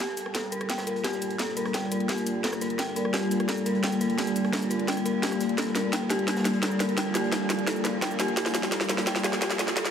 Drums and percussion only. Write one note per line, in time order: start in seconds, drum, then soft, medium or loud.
0.08 snare soft
0.17 closed hi-hat medium
0.17 cabasa medium
0.26 cross-stick soft
0.35 kick medium
0.35 snare loud
0.35 snare soft
0.35 closed hi-hat loud
0.35 closed hi-hat medium
0.43 snare soft
0.52 closed hi-hat medium
0.52 cabasa medium
0.61 cross-stick medium
0.61 closed hi-hat soft
0.69 kick loud
0.69 snare soft
0.69 closed hi-hat medium
0.78 snare loud
0.78 closed hi-hat medium
0.78 cabasa soft
0.87 snare soft
0.87 closed hi-hat medium
0.87 cabasa medium
0.96 closed hi-hat medium
1.04 kick loud
1.04 snare loud
1.04 snare soft
1.04 closed hi-hat medium
1.13 snare medium
1.13 cabasa soft
1.21 closed hi-hat medium
1.21 cabasa medium
1.30 closed hi-hat soft
1.39 kick loud
1.39 snare medium
1.39 closed hi-hat medium
1.49 snare medium
1.57 closed hi-hat medium
1.57 cabasa medium
1.65 cross-stick medium
1.65 closed hi-hat soft
1.74 kick loud
1.74 snare soft
1.74 snare loud
1.74 closed hi-hat medium
1.84 snare medium
1.92 closed hi-hat medium
1.92 cabasa medium
2.00 closed hi-hat soft
2.09 kick loud
2.09 snare medium
2.09 closed hi-hat medium
2.18 closed hi-hat soft
2.18 cabasa soft
2.26 closed hi-hat medium
2.26 cabasa medium
2.44 kick medium
2.44 snare medium
2.44 snare loud
2.44 closed hi-hat medium
2.53 cross-stick soft
2.53 snare soft
2.53 cabasa soft
2.61 closed hi-hat medium
2.61 cabasa medium
2.70 closed hi-hat soft
2.78 kick loud
2.78 snare medium
2.78 closed hi-hat medium
2.87 snare soft
2.96 closed hi-hat medium
2.96 cabasa medium
3.05 cross-stick medium
3.13 kick loud
3.13 snare loud
3.13 snare medium
3.13 closed hi-hat medium
3.22 snare medium
3.31 closed hi-hat medium
3.31 cabasa medium
3.40 cross-stick medium
3.40 closed hi-hat soft
3.49 kick loud
3.49 snare medium
3.49 closed hi-hat medium
3.57 cabasa soft
3.66 closed hi-hat medium
3.66 cabasa medium
3.75 closed hi-hat soft
3.84 kick loud
3.84 snare medium
3.84 snare loud
3.84 closed hi-hat medium
3.92 snare soft
3.92 cabasa soft
4.01 closed hi-hat medium
4.01 cabasa medium
4.10 closed hi-hat soft
4.18 kick loud
4.18 snare medium
4.18 closed hi-hat medium
4.27 snare soft
4.27 closed hi-hat soft
4.27 cabasa soft
4.36 closed hi-hat medium
4.36 cabasa medium
4.44 cross-stick soft
4.44 closed hi-hat soft
4.53 kick loud
4.53 snare loud
4.53 snare medium
4.53 closed hi-hat medium
4.62 snare soft
4.62 cabasa soft
4.70 closed hi-hat medium
4.70 cabasa medium
4.79 closed hi-hat soft
4.88 kick loud
4.88 snare medium
4.88 closed hi-hat medium
4.88 closed hi-hat loud
4.97 cross-stick soft
4.97 cabasa soft
5.05 closed hi-hat medium
5.05 cabasa medium
5.22 kick loud
5.22 snare loud
5.22 snare medium
5.22 closed hi-hat medium
5.31 cross-stick soft
5.31 snare soft
5.31 cabasa soft
5.41 closed hi-hat medium
5.41 cabasa medium
5.49 closed hi-hat soft
5.58 kick medium
5.58 snare medium
5.58 closed hi-hat medium
5.67 snare soft
5.75 snare medium
5.75 closed hi-hat medium
5.75 cabasa medium
5.92 kick loud
5.92 snare loud
5.92 snare medium
5.92 closed hi-hat medium
6.01 snare soft
6.10 snare medium
6.10 closed hi-hat medium
6.10 cabasa medium
6.19 closed hi-hat soft
6.28 kick loud
6.28 snare medium
6.28 closed hi-hat medium
6.36 snare loud
6.36 closed hi-hat medium
6.36 cabasa soft
6.45 snare soft
6.45 snare medium
6.45 closed hi-hat medium
6.45 cabasa medium
6.53 closed hi-hat medium
6.62 kick medium
6.62 snare medium
6.62 snare loud
6.62 closed hi-hat medium
6.71 snare medium
6.71 cabasa soft
6.80 snare medium
6.80 closed hi-hat medium
6.80 cabasa medium
6.89 closed hi-hat soft
6.97 kick loud
6.97 snare medium
6.97 closed hi-hat medium
7.06 snare soft
7.15 snare medium
7.15 closed hi-hat medium
7.15 cabasa medium
7.24 closed hi-hat soft
7.32 kick loud
7.32 snare medium
7.32 snare loud
7.32 closed hi-hat medium
7.41 snare soft
7.50 snare medium
7.50 closed hi-hat medium
7.50 cabasa medium
7.59 closed hi-hat soft
7.67 kick loud
7.67 snare medium
7.67 closed hi-hat medium
7.76 closed hi-hat soft
7.76 cabasa soft
7.84 snare medium
7.84 closed hi-hat medium
7.84 cabasa medium
8.02 kick loud
8.02 snare medium
8.02 snare loud
8.02 closed hi-hat medium
8.11 snare soft
8.11 cabasa soft
8.20 snare medium
8.20 closed hi-hat medium
8.20 cabasa medium
8.28 closed hi-hat soft
8.37 kick loud
8.37 snare medium
8.37 closed hi-hat medium
8.37 closed hi-hat loud
8.46 snare medium
8.46 snare soft
8.55 snare medium
8.55 closed hi-hat medium
8.55 cabasa medium
8.63 snare medium
8.72 kick loud
8.72 snare medium
8.72 snare loud
8.72 closed hi-hat loud
8.72 closed hi-hat medium
8.80 snare medium
8.89 snare loud
8.89 closed hi-hat medium
8.89 cabasa medium
8.98 snare medium
8.98 closed hi-hat soft
9.07 kick loud
9.07 snare loud
9.07 closed hi-hat loud
9.07 closed hi-hat medium
9.16 snare medium
9.16 cabasa soft
9.24 snare loud
9.24 closed hi-hat medium
9.24 cabasa medium
9.33 snare medium
9.33 closed hi-hat soft
9.42 kick loud
9.42 snare loud
9.42 closed hi-hat loud
9.42 closed hi-hat medium
9.50 snare medium
9.50 cabasa soft
9.59 snare loud
9.59 closed hi-hat medium
9.59 cabasa medium
9.67 snare medium
9.67 closed hi-hat soft
9.76 kick loud
9.76 snare loud
9.76 closed hi-hat medium
9.76 closed hi-hat loud
9.85 snare soft
9.85 snare medium
9.85 closed hi-hat soft
9.85 cabasa soft